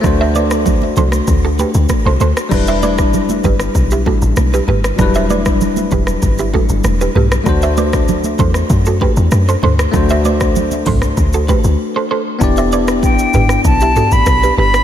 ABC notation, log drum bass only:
X:1
M:4/4
L:1/16
Q:1/4=97
K:Em
V:1 name="Log drum bass" clef=bass
D,,6 C,,2 D,,3 D,, z C,, D,, z | E,,,6 G,,,2 B,,,3 A,,, B,,,2 G,,,2 | E,,,6 E,,,2 G,,,3 G,,, E,,,2 B,,,2 | D,,6 E,,2 F,,3 E,, F,,2 D,,2 |
D,,6 C,,2 D,,3 D,, z4 | E,,,6 G,,,2 B,,,3 A,,, B,,,2 G,,,2 |]